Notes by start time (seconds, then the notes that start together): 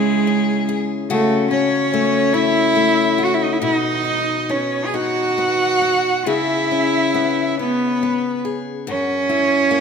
Already playing: C#3 G#3 C#4 E4 G#4
0.27 C#4
0.69 G#4
1.10 C#3 A3 F#4 A4
1.51 C#4 C#5
1.94 A3
2.34 C#4 E4 E5
2.76 A3
3.18 F#4
3.25 F#4 F#5
3.34 E4 E5
3.43 D#4 D#5
3.52 E4 E5
3.62 B2 D#4 F#4 D#5
4.04 D#4
4.49 B3 C#4 C#5
4.86 G#4 G#5
4.94 D#4 F#4 F#5
5.38 B3
5.82 F#4
6.26 C#3 E4 G#4 E5
6.71 C#4
7.14 B3
7.59 B3 C#4 B4
8.03 B3
8.45 G#4
8.87 F#2 C#4 F#4 C#5
9.29 E4
9.71 A#3